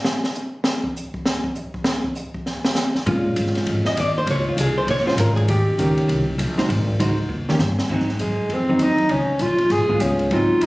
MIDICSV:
0, 0, Header, 1, 6, 480
1, 0, Start_track
1, 0, Tempo, 302115
1, 1026, Time_signature, 4, 2, 24, 8
1, 16937, End_track
2, 0, Start_track
2, 0, Title_t, "Hollow-body jazz guitar"
2, 0, Program_c, 0, 26
2, 4866, Note_on_c, 0, 56, 67
2, 4888, Note_on_c, 0, 61, 69
2, 4892, Note_on_c, 0, 65, 78
2, 6140, Note_on_c, 0, 75, 95
2, 6197, Note_off_c, 0, 56, 0
2, 6208, Note_off_c, 0, 61, 0
2, 6210, Note_off_c, 0, 65, 0
2, 6307, Note_off_c, 0, 75, 0
2, 6353, Note_on_c, 0, 74, 104
2, 6621, Note_off_c, 0, 74, 0
2, 6638, Note_on_c, 0, 72, 96
2, 6796, Note_off_c, 0, 72, 0
2, 6841, Note_on_c, 0, 73, 91
2, 7105, Note_off_c, 0, 73, 0
2, 7123, Note_on_c, 0, 65, 52
2, 7278, Note_off_c, 0, 65, 0
2, 7321, Note_on_c, 0, 68, 90
2, 7584, Note_off_c, 0, 68, 0
2, 7589, Note_on_c, 0, 72, 97
2, 7750, Note_off_c, 0, 72, 0
2, 7794, Note_on_c, 0, 73, 109
2, 8036, Note_on_c, 0, 56, 69
2, 8036, Note_on_c, 0, 61, 62
2, 8049, Note_on_c, 0, 65, 70
2, 8053, Note_off_c, 0, 73, 0
2, 8059, Note_on_c, 0, 72, 99
2, 8225, Note_off_c, 0, 72, 0
2, 8253, Note_on_c, 0, 70, 94
2, 8512, Note_off_c, 0, 70, 0
2, 8518, Note_on_c, 0, 68, 102
2, 8662, Note_off_c, 0, 61, 0
2, 8663, Note_off_c, 0, 56, 0
2, 8669, Note_off_c, 0, 65, 0
2, 8694, Note_off_c, 0, 68, 0
2, 8731, Note_on_c, 0, 67, 88
2, 9190, Note_off_c, 0, 67, 0
2, 9191, Note_on_c, 0, 51, 66
2, 9198, Note_on_c, 0, 58, 63
2, 9200, Note_on_c, 0, 61, 71
2, 9209, Note_on_c, 0, 67, 74
2, 9906, Note_off_c, 0, 51, 0
2, 9910, Note_off_c, 0, 58, 0
2, 9911, Note_off_c, 0, 61, 0
2, 9915, Note_off_c, 0, 67, 0
2, 10452, Note_on_c, 0, 56, 63
2, 10460, Note_on_c, 0, 63, 81
2, 10472, Note_on_c, 0, 66, 75
2, 10476, Note_on_c, 0, 72, 76
2, 10608, Note_off_c, 0, 56, 0
2, 10612, Note_off_c, 0, 63, 0
2, 10618, Note_off_c, 0, 66, 0
2, 10620, Note_off_c, 0, 72, 0
2, 11117, Note_on_c, 0, 56, 56
2, 11118, Note_on_c, 0, 63, 63
2, 11130, Note_on_c, 0, 66, 62
2, 11135, Note_on_c, 0, 72, 62
2, 11380, Note_off_c, 0, 56, 0
2, 11380, Note_off_c, 0, 63, 0
2, 11386, Note_off_c, 0, 66, 0
2, 11388, Note_off_c, 0, 72, 0
2, 11898, Note_on_c, 0, 51, 79
2, 11912, Note_on_c, 0, 58, 86
2, 11917, Note_on_c, 0, 67, 78
2, 11920, Note_on_c, 0, 61, 86
2, 12051, Note_off_c, 0, 51, 0
2, 12058, Note_off_c, 0, 58, 0
2, 12061, Note_off_c, 0, 67, 0
2, 12062, Note_off_c, 0, 61, 0
2, 12569, Note_on_c, 0, 54, 49
2, 12579, Note_on_c, 0, 60, 57
2, 12586, Note_on_c, 0, 63, 58
2, 12826, Note_off_c, 0, 54, 0
2, 12830, Note_off_c, 0, 60, 0
2, 12834, Note_off_c, 0, 63, 0
2, 13809, Note_on_c, 0, 54, 55
2, 13810, Note_on_c, 0, 60, 52
2, 13820, Note_on_c, 0, 63, 60
2, 14430, Note_off_c, 0, 54, 0
2, 14430, Note_off_c, 0, 60, 0
2, 14435, Note_off_c, 0, 63, 0
2, 15712, Note_on_c, 0, 56, 48
2, 15726, Note_on_c, 0, 59, 54
2, 15728, Note_on_c, 0, 65, 59
2, 16343, Note_off_c, 0, 56, 0
2, 16350, Note_off_c, 0, 59, 0
2, 16351, Note_off_c, 0, 65, 0
2, 16384, Note_on_c, 0, 54, 60
2, 16404, Note_on_c, 0, 60, 61
2, 16409, Note_on_c, 0, 63, 64
2, 16937, Note_off_c, 0, 54, 0
2, 16937, Note_off_c, 0, 60, 0
2, 16937, Note_off_c, 0, 63, 0
2, 16937, End_track
3, 0, Start_track
3, 0, Title_t, "Tenor saxophone"
3, 0, Program_c, 1, 66
3, 13032, Note_on_c, 1, 56, 61
3, 13555, Note_on_c, 1, 60, 70
3, 13579, Note_off_c, 1, 56, 0
3, 14025, Note_on_c, 1, 63, 80
3, 14049, Note_off_c, 1, 60, 0
3, 14471, Note_on_c, 1, 61, 69
3, 14495, Note_off_c, 1, 63, 0
3, 14954, Note_on_c, 1, 65, 79
3, 14978, Note_off_c, 1, 61, 0
3, 15434, Note_on_c, 1, 68, 98
3, 15458, Note_off_c, 1, 65, 0
3, 15907, Note_on_c, 1, 61, 70
3, 15931, Note_off_c, 1, 68, 0
3, 16403, Note_on_c, 1, 65, 81
3, 16427, Note_off_c, 1, 61, 0
3, 16885, Note_on_c, 1, 63, 71
3, 16909, Note_off_c, 1, 65, 0
3, 16937, Note_off_c, 1, 63, 0
3, 16937, End_track
4, 0, Start_track
4, 0, Title_t, "Upright bass"
4, 0, Program_c, 2, 32
4, 4866, Note_on_c, 2, 46, 95
4, 5331, Note_off_c, 2, 46, 0
4, 5340, Note_on_c, 2, 44, 100
4, 5807, Note_off_c, 2, 44, 0
4, 5818, Note_on_c, 2, 41, 86
4, 6287, Note_off_c, 2, 41, 0
4, 6305, Note_on_c, 2, 39, 96
4, 6770, Note_off_c, 2, 39, 0
4, 6777, Note_on_c, 2, 37, 94
4, 7245, Note_off_c, 2, 37, 0
4, 7257, Note_on_c, 2, 36, 87
4, 7725, Note_off_c, 2, 36, 0
4, 7734, Note_on_c, 2, 34, 84
4, 8204, Note_off_c, 2, 34, 0
4, 8217, Note_on_c, 2, 32, 94
4, 8685, Note_off_c, 2, 32, 0
4, 8703, Note_on_c, 2, 39, 94
4, 9168, Note_off_c, 2, 39, 0
4, 9186, Note_on_c, 2, 37, 96
4, 9649, Note_off_c, 2, 37, 0
4, 9662, Note_on_c, 2, 36, 95
4, 10127, Note_off_c, 2, 36, 0
4, 10139, Note_on_c, 2, 34, 93
4, 10605, Note_off_c, 2, 34, 0
4, 10624, Note_on_c, 2, 32, 100
4, 11088, Note_off_c, 2, 32, 0
4, 11110, Note_on_c, 2, 37, 94
4, 11571, Note_off_c, 2, 37, 0
4, 11580, Note_on_c, 2, 39, 92
4, 12046, Note_off_c, 2, 39, 0
4, 12066, Note_on_c, 2, 43, 103
4, 12529, Note_off_c, 2, 43, 0
4, 12542, Note_on_c, 2, 44, 76
4, 12999, Note_off_c, 2, 44, 0
4, 13008, Note_on_c, 2, 42, 83
4, 13480, Note_off_c, 2, 42, 0
4, 13489, Note_on_c, 2, 41, 78
4, 13955, Note_off_c, 2, 41, 0
4, 13965, Note_on_c, 2, 39, 85
4, 14435, Note_off_c, 2, 39, 0
4, 14444, Note_on_c, 2, 37, 89
4, 14733, Note_off_c, 2, 37, 0
4, 14927, Note_on_c, 2, 34, 86
4, 15401, Note_off_c, 2, 34, 0
4, 15410, Note_on_c, 2, 32, 79
4, 15697, Note_off_c, 2, 32, 0
4, 15883, Note_on_c, 2, 37, 84
4, 16360, Note_off_c, 2, 37, 0
4, 16373, Note_on_c, 2, 44, 84
4, 16845, Note_off_c, 2, 44, 0
4, 16857, Note_on_c, 2, 39, 92
4, 16937, Note_off_c, 2, 39, 0
4, 16937, End_track
5, 0, Start_track
5, 0, Title_t, "Muted upright bass strokes"
5, 4684, Note_on_c, 9, 29, 43
5, 4843, Note_off_c, 9, 29, 0
5, 14753, Note_on_c, 9, 29, 34
5, 14912, Note_off_c, 9, 29, 0
5, 15710, Note_on_c, 9, 29, 35
5, 15869, Note_off_c, 9, 29, 0
5, 16937, End_track
6, 0, Start_track
6, 0, Title_t, "Drums"
6, 71, Note_on_c, 9, 38, 91
6, 230, Note_off_c, 9, 38, 0
6, 376, Note_on_c, 9, 38, 53
6, 535, Note_off_c, 9, 38, 0
6, 555, Note_on_c, 9, 44, 55
6, 714, Note_off_c, 9, 44, 0
6, 1015, Note_on_c, 9, 38, 104
6, 1173, Note_off_c, 9, 38, 0
6, 1329, Note_on_c, 9, 36, 77
6, 1487, Note_off_c, 9, 36, 0
6, 1528, Note_on_c, 9, 44, 53
6, 1687, Note_off_c, 9, 44, 0
6, 1810, Note_on_c, 9, 36, 82
6, 1969, Note_off_c, 9, 36, 0
6, 1994, Note_on_c, 9, 38, 94
6, 2153, Note_off_c, 9, 38, 0
6, 2286, Note_on_c, 9, 36, 80
6, 2445, Note_off_c, 9, 36, 0
6, 2468, Note_on_c, 9, 44, 54
6, 2627, Note_off_c, 9, 44, 0
6, 2767, Note_on_c, 9, 36, 80
6, 2926, Note_off_c, 9, 36, 0
6, 2930, Note_on_c, 9, 38, 102
6, 3089, Note_off_c, 9, 38, 0
6, 3245, Note_on_c, 9, 36, 82
6, 3404, Note_off_c, 9, 36, 0
6, 3421, Note_on_c, 9, 44, 58
6, 3580, Note_off_c, 9, 44, 0
6, 3724, Note_on_c, 9, 36, 76
6, 3883, Note_off_c, 9, 36, 0
6, 3910, Note_on_c, 9, 38, 47
6, 4069, Note_off_c, 9, 38, 0
6, 4203, Note_on_c, 9, 38, 104
6, 4361, Note_off_c, 9, 38, 0
6, 4372, Note_on_c, 9, 38, 93
6, 4375, Note_on_c, 9, 44, 54
6, 4531, Note_off_c, 9, 38, 0
6, 4534, Note_off_c, 9, 44, 0
6, 4690, Note_on_c, 9, 38, 48
6, 4849, Note_off_c, 9, 38, 0
6, 4866, Note_on_c, 9, 36, 30
6, 4870, Note_on_c, 9, 51, 67
6, 5025, Note_off_c, 9, 36, 0
6, 5029, Note_off_c, 9, 51, 0
6, 5341, Note_on_c, 9, 44, 66
6, 5341, Note_on_c, 9, 51, 70
6, 5342, Note_on_c, 9, 36, 20
6, 5500, Note_off_c, 9, 44, 0
6, 5500, Note_off_c, 9, 51, 0
6, 5501, Note_off_c, 9, 36, 0
6, 5502, Note_on_c, 9, 38, 31
6, 5643, Note_on_c, 9, 51, 55
6, 5661, Note_off_c, 9, 38, 0
6, 5662, Note_on_c, 9, 38, 48
6, 5802, Note_off_c, 9, 51, 0
6, 5821, Note_off_c, 9, 38, 0
6, 5823, Note_on_c, 9, 36, 22
6, 5824, Note_on_c, 9, 51, 64
6, 5982, Note_off_c, 9, 36, 0
6, 5982, Note_off_c, 9, 51, 0
6, 6118, Note_on_c, 9, 38, 58
6, 6277, Note_off_c, 9, 38, 0
6, 6302, Note_on_c, 9, 36, 25
6, 6311, Note_on_c, 9, 44, 59
6, 6311, Note_on_c, 9, 51, 76
6, 6461, Note_off_c, 9, 36, 0
6, 6470, Note_off_c, 9, 44, 0
6, 6470, Note_off_c, 9, 51, 0
6, 6781, Note_on_c, 9, 36, 29
6, 6787, Note_on_c, 9, 51, 72
6, 6940, Note_off_c, 9, 36, 0
6, 6946, Note_off_c, 9, 51, 0
6, 7259, Note_on_c, 9, 36, 21
6, 7273, Note_on_c, 9, 44, 67
6, 7273, Note_on_c, 9, 51, 73
6, 7418, Note_off_c, 9, 36, 0
6, 7432, Note_off_c, 9, 44, 0
6, 7432, Note_off_c, 9, 51, 0
6, 7738, Note_on_c, 9, 36, 25
6, 7752, Note_on_c, 9, 51, 61
6, 7897, Note_off_c, 9, 36, 0
6, 7911, Note_off_c, 9, 51, 0
6, 7911, Note_on_c, 9, 38, 28
6, 8070, Note_off_c, 9, 38, 0
6, 8074, Note_on_c, 9, 38, 48
6, 8228, Note_on_c, 9, 44, 65
6, 8228, Note_on_c, 9, 51, 80
6, 8233, Note_off_c, 9, 38, 0
6, 8387, Note_off_c, 9, 44, 0
6, 8387, Note_off_c, 9, 51, 0
6, 8534, Note_on_c, 9, 51, 51
6, 8693, Note_off_c, 9, 51, 0
6, 8712, Note_on_c, 9, 51, 75
6, 8871, Note_off_c, 9, 51, 0
6, 9182, Note_on_c, 9, 36, 22
6, 9194, Note_on_c, 9, 44, 62
6, 9194, Note_on_c, 9, 51, 74
6, 9341, Note_off_c, 9, 36, 0
6, 9353, Note_off_c, 9, 44, 0
6, 9353, Note_off_c, 9, 51, 0
6, 9493, Note_on_c, 9, 51, 53
6, 9651, Note_off_c, 9, 51, 0
6, 9664, Note_on_c, 9, 36, 24
6, 9678, Note_on_c, 9, 51, 64
6, 9823, Note_off_c, 9, 36, 0
6, 9837, Note_off_c, 9, 51, 0
6, 10153, Note_on_c, 9, 44, 56
6, 10153, Note_on_c, 9, 51, 75
6, 10312, Note_off_c, 9, 44, 0
6, 10312, Note_off_c, 9, 51, 0
6, 10464, Note_on_c, 9, 38, 61
6, 10467, Note_on_c, 9, 51, 49
6, 10623, Note_off_c, 9, 38, 0
6, 10626, Note_off_c, 9, 51, 0
6, 10629, Note_on_c, 9, 36, 25
6, 10642, Note_on_c, 9, 51, 72
6, 10787, Note_off_c, 9, 36, 0
6, 10800, Note_off_c, 9, 51, 0
6, 10928, Note_on_c, 9, 36, 74
6, 11087, Note_off_c, 9, 36, 0
6, 11122, Note_on_c, 9, 44, 58
6, 11122, Note_on_c, 9, 51, 75
6, 11281, Note_off_c, 9, 44, 0
6, 11281, Note_off_c, 9, 51, 0
6, 11896, Note_on_c, 9, 38, 61
6, 12055, Note_off_c, 9, 38, 0
6, 12062, Note_on_c, 9, 38, 85
6, 12065, Note_on_c, 9, 44, 62
6, 12221, Note_off_c, 9, 38, 0
6, 12224, Note_off_c, 9, 44, 0
6, 12370, Note_on_c, 9, 38, 78
6, 12528, Note_off_c, 9, 38, 0
6, 12536, Note_on_c, 9, 49, 64
6, 12544, Note_on_c, 9, 36, 66
6, 12695, Note_off_c, 9, 49, 0
6, 12702, Note_off_c, 9, 36, 0
6, 12705, Note_on_c, 9, 38, 25
6, 12852, Note_off_c, 9, 38, 0
6, 12852, Note_on_c, 9, 38, 38
6, 13011, Note_off_c, 9, 38, 0
6, 13016, Note_on_c, 9, 44, 49
6, 13016, Note_on_c, 9, 51, 61
6, 13175, Note_off_c, 9, 44, 0
6, 13175, Note_off_c, 9, 51, 0
6, 13494, Note_on_c, 9, 36, 20
6, 13499, Note_on_c, 9, 51, 57
6, 13653, Note_off_c, 9, 36, 0
6, 13658, Note_off_c, 9, 51, 0
6, 13968, Note_on_c, 9, 44, 50
6, 13968, Note_on_c, 9, 51, 61
6, 13973, Note_on_c, 9, 36, 23
6, 14126, Note_off_c, 9, 44, 0
6, 14126, Note_off_c, 9, 51, 0
6, 14132, Note_off_c, 9, 36, 0
6, 14269, Note_on_c, 9, 51, 39
6, 14428, Note_off_c, 9, 51, 0
6, 14443, Note_on_c, 9, 51, 60
6, 14448, Note_on_c, 9, 36, 21
6, 14602, Note_off_c, 9, 51, 0
6, 14607, Note_off_c, 9, 36, 0
6, 14921, Note_on_c, 9, 44, 44
6, 14921, Note_on_c, 9, 51, 57
6, 14930, Note_on_c, 9, 36, 21
6, 15080, Note_off_c, 9, 44, 0
6, 15080, Note_off_c, 9, 51, 0
6, 15089, Note_off_c, 9, 36, 0
6, 15225, Note_on_c, 9, 51, 45
6, 15384, Note_off_c, 9, 51, 0
6, 15408, Note_on_c, 9, 38, 34
6, 15411, Note_on_c, 9, 51, 52
6, 15567, Note_off_c, 9, 38, 0
6, 15570, Note_off_c, 9, 51, 0
6, 15713, Note_on_c, 9, 36, 49
6, 15872, Note_off_c, 9, 36, 0
6, 15889, Note_on_c, 9, 44, 50
6, 15889, Note_on_c, 9, 51, 60
6, 16048, Note_off_c, 9, 44, 0
6, 16048, Note_off_c, 9, 51, 0
6, 16192, Note_on_c, 9, 51, 41
6, 16351, Note_off_c, 9, 51, 0
6, 16373, Note_on_c, 9, 36, 25
6, 16377, Note_on_c, 9, 51, 55
6, 16531, Note_off_c, 9, 36, 0
6, 16536, Note_off_c, 9, 51, 0
6, 16859, Note_on_c, 9, 36, 25
6, 16861, Note_on_c, 9, 44, 48
6, 16861, Note_on_c, 9, 51, 67
6, 16937, Note_off_c, 9, 36, 0
6, 16937, Note_off_c, 9, 44, 0
6, 16937, Note_off_c, 9, 51, 0
6, 16937, End_track
0, 0, End_of_file